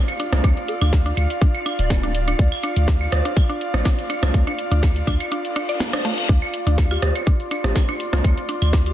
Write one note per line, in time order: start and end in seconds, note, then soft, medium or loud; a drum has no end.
0.00 8.93 F4 medium
0.00 8.93 D5 medium
0.00 6.84 F5 medium
0.08 closed hi-hat soft
0.08 claves soft
0.08 shaker soft
0.19 0.25 D4 medium
0.19 closed hi-hat medium
0.19 shaker loud
0.33 0.41 C2 medium
0.33 cross-stick medium
0.33 closed hi-hat soft
0.33 percussion blips medium
0.33 shaker soft
0.44 0.53 D2 loud
0.44 0.47 D4 medium
0.44 kick loud
0.44 closed hi-hat soft
0.44 claves soft
0.44 shaker medium
0.57 closed hi-hat soft
0.57 shaker soft
0.68 0.83 A4 medium
0.68 closed hi-hat medium
0.68 shaker medium
0.81 1.12 D2 loud
0.81 0.89 D4 medium
0.81 closed hi-hat soft
0.81 claves medium
0.81 shaker soft
0.92 kick loud
0.92 snare medium
0.92 closed hi-hat soft
0.92 shaker medium
1.06 1.13 D4 medium
1.06 closed hi-hat soft
1.06 shaker soft
1.17 1.27 D2 medium
1.17 closed hi-hat loud
1.17 claves soft
1.17 shaker medium
1.30 closed hi-hat soft
1.30 shaker soft
1.41 1.47 D4 medium
1.41 kick loud
1.41 closed hi-hat medium
1.41 shaker medium
1.54 closed hi-hat soft
1.54 claves soft
1.54 shaker soft
1.66 1.69 D4 medium
1.66 closed hi-hat medium
1.66 claves medium
1.66 shaker medium
1.79 2.34 D1 loud
1.79 2.47 D5 loud
1.79 closed hi-hat soft
1.79 shaker soft
1.90 kick loud
1.90 snare loud
1.90 closed hi-hat medium
1.90 percussion blips medium
1.90 claves soft
1.90 shaker medium
2.03 2.11 D4 medium
2.03 closed hi-hat soft
2.03 shaker soft
2.15 closed hi-hat medium
2.15 shaker medium
2.28 2.35 D4 medium
2.28 closed hi-hat soft
2.28 claves soft
2.28 shaker soft
2.39 2.48 D2 loud
2.39 kick loud
2.39 closed hi-hat medium
2.39 shaker medium
2.52 claves medium
2.52 shaker soft
2.63 2.69 D4 medium
2.63 closed hi-hat medium
2.63 claves soft
2.63 shaker medium
2.76 3.07 D2 loud
2.76 closed hi-hat soft
2.76 shaker soft
2.88 2.91 D4 medium
2.88 kick loud
2.88 snare medium
2.88 closed hi-hat medium
2.88 shaker medium
3.01 claves soft
3.01 shaker soft
3.12 3.22 D2 medium
3.12 cross-stick medium
3.12 closed hi-hat medium
3.12 shaker loud
3.25 3.33 D4 medium
3.25 closed hi-hat soft
3.25 shaker soft
3.37 kick loud
3.37 closed hi-hat medium
3.37 claves medium
3.37 shaker medium
3.49 3.57 D4 medium
3.49 closed hi-hat soft
3.49 shaker soft
3.61 closed hi-hat medium
3.61 shaker medium
3.74 3.82 A1 loud
3.74 cross-stick medium
3.74 closed hi-hat soft
3.74 percussion blips medium
3.74 claves soft
3.74 shaker soft
3.85 3.91 D4 medium
3.85 kick loud
3.85 snare loud
3.85 closed hi-hat medium
3.85 shaker soft
3.98 closed hi-hat soft
3.98 shaker soft
4.10 4.13 D4 medium
4.10 closed hi-hat medium
4.10 claves soft
4.10 shaker medium
4.23 4.31 C2 medium
4.23 cross-stick medium
4.23 closed hi-hat soft
4.23 percussion blips medium
4.23 claves medium
4.23 shaker soft
4.34 4.44 D2 loud
4.34 kick loud
4.34 closed hi-hat medium
4.34 shaker medium
4.47 4.55 D4 medium
4.47 closed hi-hat soft
4.47 claves soft
4.47 shaker soft
4.58 closed hi-hat medium
4.58 shaker medium
4.71 5.02 D2 loud
4.71 4.79 D4 medium
4.71 closed hi-hat soft
4.71 shaker soft
4.83 kick loud
4.83 snare medium
4.83 closed hi-hat medium
4.83 claves soft
4.83 shaker medium
4.96 closed hi-hat soft
4.96 shaker soft
5.07 5.17 D2 medium
5.07 5.13 D4 medium
5.07 kick medium
5.07 closed hi-hat loud
5.07 claves medium
5.07 shaker loud
5.20 closed hi-hat soft
5.20 claves soft
5.20 shaker soft
5.31 5.35 D4 medium
5.31 closed hi-hat medium
5.31 reverse cymbal medium
5.31 shaker medium
5.45 closed hi-hat soft
5.45 shaker soft
5.56 5.60 D4 loud
5.56 closed hi-hat medium
5.56 claves soft
5.56 shaker medium
5.69 5.74 D5 medium
5.69 closed hi-hat soft
5.69 shaker soft
5.80 snare loud
5.80 closed hi-hat medium
5.80 percussion blips medium
5.80 shaker soft
5.93 6.01 D4 medium
5.93 cross-stick medium
5.93 closed hi-hat soft
5.93 claves medium
5.93 shaker soft
6.04 6.11 A3 loud
6.04 closed hi-hat medium
6.04 shaker medium
6.18 closed hi-hat soft
6.18 shaker soft
6.29 6.39 D2 loud
6.29 6.33 D4 medium
6.29 kick loud
6.29 closed hi-hat medium
6.29 shaker medium
6.42 claves soft
6.42 shaker soft
6.54 closed hi-hat medium
6.54 shaker loud
6.66 6.97 D2 loud
6.66 6.74 D4 medium
6.66 closed hi-hat soft
6.66 shaker soft
6.78 8.93 C6 medium
6.78 kick loud
6.78 snare medium
6.78 closed hi-hat medium
6.78 claves soft
6.78 shaker soft
6.91 6.96 F4 medium
6.91 6.98 G4 medium
6.91 claves medium
6.91 shaker soft
7.02 7.12 D2 medium
7.02 7.11 G4 medium
7.02 cross-stick medium
7.02 closed hi-hat loud
7.02 shaker medium
7.15 closed hi-hat soft
7.15 claves soft
7.15 shaker soft
7.26 7.33 D4 medium
7.26 kick loud
7.26 closed hi-hat medium
7.26 shaker medium
7.40 closed hi-hat soft
7.40 shaker soft
7.51 7.55 D4 medium
7.51 closed hi-hat medium
7.51 claves soft
7.51 shaker medium
7.64 7.72 A1 loud
7.64 7.77 G4 medium
7.64 cross-stick medium
7.64 closed hi-hat soft
7.64 percussion blips medium
7.64 shaker soft
7.76 kick loud
7.76 snare loud
7.76 closed hi-hat medium
7.76 claves medium
7.76 shaker medium
7.89 7.96 D4 medium
7.89 closed hi-hat soft
7.89 claves soft
7.89 shaker soft
8.00 closed hi-hat medium
8.00 shaker medium
8.13 8.21 C2 medium
8.13 8.18 F4 medium
8.13 cross-stick medium
8.13 closed hi-hat soft
8.13 percussion blips medium
8.13 shaker soft
8.24 8.34 D2 loud
8.24 kick loud
8.24 closed hi-hat medium
8.24 claves soft
8.24 shaker medium
8.37 closed hi-hat soft
8.37 shaker soft
8.49 8.55 D4 medium
8.49 closed hi-hat medium
8.49 shaker medium
8.62 8.93 D2 loud
8.62 closed hi-hat soft
8.62 claves medium
8.62 shaker soft
8.73 8.77 D4 medium
8.73 kick loud
8.73 snare medium
8.73 closed hi-hat soft
8.73 shaker medium
8.86 8.93 G4 medium
8.86 closed hi-hat soft
8.86 shaker soft